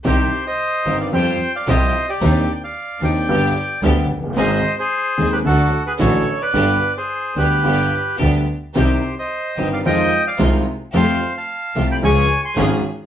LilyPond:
<<
  \new Staff \with { instrumentName = "Bandoneon" } { \time 4/4 \key c \minor \tempo 4 = 111 << { c''8. ees''4 f''16 g''8. f''16 ees''8. d''16~ | d''8~ d''32 g''32 f''8. g''4. r4 | ees''8. c''4 b'16 a'8. b'16 des''8. d''16~ | d''8. c''8. b'4. r4 |
c''8. ees''4 f''16 g''8. f''8 r8. | f''8. a''4 b''16 des'''8. c'''8 r8. | } \\ { g'8. c''4 d''16 c''8. d''16 c''8. g'16~ | g'8 r16 d''8. d''4. r4 | c''8. aes'4 g'16 fis'8. aes'16 a'8. b'16~ | b'8. aes'8. g'4. r4 |
g'8. c''4 d''16 ees''8. d''8 r8. | c''8. f''4 g''16 aes''8. aes''8 r8. | } >> }
  \new Staff \with { instrumentName = "String section" } { \time 4/4 \key c \minor <c' ees' g'>8 r4 <c' ees' g'>8 <c' f' g'>8 r8 <c' f' g'>8 r8 | <c' d' ees'>8 r4 <c' d' ees'>8 <b d' g'>8 r8 <b d' g'>8 r8 | <c' ees' aes'>8 r4 <c' ees' aes'>8 <a d' fis'>8 r8 <a d' fis'>8 r8 | <b d' g'>8 r4 <b d' g'>8 <b d' g'>8 r8 <b d' g'>8 r8 |
<c' ees' g'>8 r4 <c' ees' g'>8 <aes ees' f'>8 r8 <aes ees' f'>8 r8 | <a f' g'>8 r4 <a f' g'>8 <des' f' aes'>8 r8 <des' f' aes'>8 r8 | }
  \new Staff \with { instrumentName = "Grand piano" } { \clef bass \time 4/4 \key c \minor <c, c ees g c' g'>8 r4 <g,, g, ees g c' g'>8 <f, f g c' g'>8 r8 <c, c f g c' g'>8 r8 | <ees, ees c' d' g'>8 r4 <ees, ees c' d' g'>8 <g,, g, d g b g'>8 r8 <d, d g b g'>8 r32 f,,32 fis,,32 g,,32 | <aes,, aes, ees aes c' aes'>8 r4 <ees,, ees, ees aes c' aes'>8 <d, d fis a fis'>8 r8 <a,, a, d fis a fis'>8 r8 | <g,, g, d g b g'>8 r4 <d, d g b g'>8 <g,, g, d g b g'>8 r8 <d, d g b g'>8 r8 |
<c, c ees g c' g'>8 r4 <g,, g, ees g c' g'>8 <f, ees f aes c' f'>8 r8 <c, c ees aes c' f'>8 r8 | <f, f a c' g'>8 r4 <c, c f a c' g'>8 <des, des f aes des' aes'>8 r8 <aes,, aes, f aes des' aes'>8 r8 | }
  \new Staff \with { instrumentName = "Double bass" } { \clef bass \time 4/4 \key c \minor c,8 r4 g,,8 f,8 r8 c,8 r8 | ees,8 r4 ees,8 g,,8 r8 d,8 fis,,8 | aes,,8 r4 ees,8 d,8 r8 a,,8 r8 | g,,8 r4 d,8 g,,8 r8 d,8 r8 |
c,8 r4 g,,8 f,8 r8 c,8 r8 | f,8 r4 c,8 des,8 r8 aes,,8 r8 | }
>>